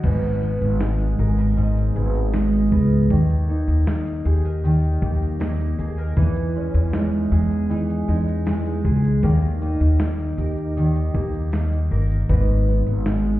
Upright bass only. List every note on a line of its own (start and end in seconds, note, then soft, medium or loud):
0.04 0.57 G#1 medium
0.61 1.15 G#1 medium
1.19 1.92 G#1 medium
1.96 2.73 G#1 medium
2.72 3.10 C#2 medium
3.10 3.64 D#2 medium
3.68 4.21 D#2 medium
4.25 4.98 D#2 loud
5.02 5.75 D#2 loud
5.79 6.14 D#2 medium
6.17 6.70 E2 medium
6.74 7.28 E2 loud
7.32 8.04 E2 loud
8.08 8.81 E2 loud
8.85 9.20 C#2 medium
9.23 9.77 D#2 loud
9.80 10.34 D#2 medium
10.38 11.10 D#2 medium
11.14 11.87 D#2 medium
11.91 12.26 G1 medium
12.30 12.83 G#1 medium
12.86 13.40 G#1 medium